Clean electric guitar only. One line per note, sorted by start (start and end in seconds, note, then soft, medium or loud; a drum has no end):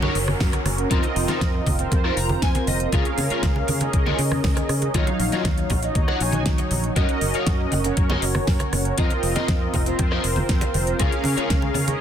0.02 0.15 D#4 medium
0.02 0.15 F#4 loud
0.02 0.15 A#4 loud
0.02 0.15 C#5 loud
0.28 muted clean electric guitar stroke soft
0.53 muted clean electric guitar stroke medium
0.65 muted clean electric guitar stroke soft
0.90 1.03 D#4 loud
0.90 1.03 F4 medium
0.90 1.03 A#4 loud
0.90 1.03 C5 loud
1.16 muted clean electric guitar stroke soft
1.28 1.41 D#4 medium
1.28 1.41 F4 medium
1.28 1.41 A#4 medium
1.28 1.41 C5 loud
1.54 muted clean electric guitar stroke soft
1.67 muted clean electric guitar stroke medium
1.80 muted clean electric guitar stroke soft
2.04 2.17 D#4 loud
2.04 2.17 F4 loud
2.04 2.17 A#4 loud
2.04 2.17 C5 loud
2.17 2.41 A#5 medium
2.30 muted clean electric guitar stroke soft
2.43 2.66 G#5 medium
2.55 muted clean electric guitar stroke medium
2.68 2.91 D#5 medium
2.68 muted clean electric guitar stroke soft
2.93 3.06 F4 loud
2.93 3.06 G#4 loud
2.93 3.06 A#4 medium
2.93 3.06 C#5 loud
3.18 muted clean electric guitar stroke soft
3.30 3.43 F4 medium
3.30 3.43 G#4 medium
3.30 3.43 A#4 medium
3.30 3.43 C#5 medium
3.56 muted clean electric guitar stroke soft
3.68 muted clean electric guitar stroke medium
3.81 muted clean electric guitar stroke soft
4.06 4.19 F4 loud
4.06 4.19 G#4 loud
4.06 4.19 A#4 loud
4.06 4.19 C#5 loud
4.31 muted clean electric guitar stroke soft
4.56 muted clean electric guitar stroke medium
4.69 muted clean electric guitar stroke soft
4.95 5.07 F4 loud
4.95 5.07 F#4 medium
4.95 5.07 C#5 medium
4.95 5.07 D#5 loud
5.20 muted clean electric guitar stroke soft
5.32 5.45 F4 medium
5.32 5.45 F#4 medium
5.32 5.45 C#5 medium
5.32 5.45 D#5 loud
5.58 muted clean electric guitar stroke soft
5.71 muted clean electric guitar stroke medium
5.83 muted clean electric guitar stroke soft
6.08 6.21 F4 medium
6.08 6.21 F#4 loud
6.08 6.21 C#5 medium
6.08 6.21 F#5 loud
6.34 muted clean electric guitar stroke soft
6.58 muted clean electric guitar stroke medium
6.71 muted clean electric guitar stroke soft
6.96 7.09 F#4 loud
6.96 7.09 A#4 loud
6.96 7.09 C#5 medium
6.96 7.09 D#5 loud
7.22 muted clean electric guitar stroke soft
7.35 7.47 F#4 medium
7.35 7.47 A#4 medium
7.35 7.47 C#5 medium
7.35 7.47 F5 medium
7.60 muted clean electric guitar stroke soft
7.73 muted clean electric guitar stroke medium
7.85 muted clean electric guitar stroke soft
8.10 8.23 F#4 loud
8.10 8.23 A#4 loud
8.10 8.23 C#5 medium
8.10 8.23 D#5 loud
8.35 muted clean electric guitar stroke soft
8.60 muted clean electric guitar stroke medium
8.73 muted clean electric guitar stroke soft
8.98 9.11 F4 loud
8.98 9.11 A#4 loud
8.98 9.11 C5 medium
8.98 9.11 D#5 loud
9.23 muted clean electric guitar stroke soft
9.36 9.48 F4 medium
9.36 9.48 A#4 medium
9.36 9.48 C5 medium
9.36 9.48 D#5 loud
9.61 muted clean electric guitar stroke soft
9.74 muted clean electric guitar stroke medium
9.87 muted clean electric guitar stroke soft
10.11 10.24 F4 loud
10.11 10.24 A#4 loud
10.11 10.24 C5 loud
10.11 10.24 D#5 loud
10.37 muted clean electric guitar stroke soft
10.62 muted clean electric guitar stroke medium
10.75 muted clean electric guitar stroke soft
10.99 11.12 F4 loud
10.99 11.12 G#4 loud
10.99 11.12 A#4 medium
10.99 11.12 C#5 medium
11.25 muted clean electric guitar stroke soft
11.37 11.50 F4 medium
11.37 11.50 G#4 medium
11.37 11.50 A#4 medium
11.37 11.50 C#5 loud
11.62 muted clean electric guitar stroke soft
11.75 muted clean electric guitar stroke medium
11.87 muted clean electric guitar stroke soft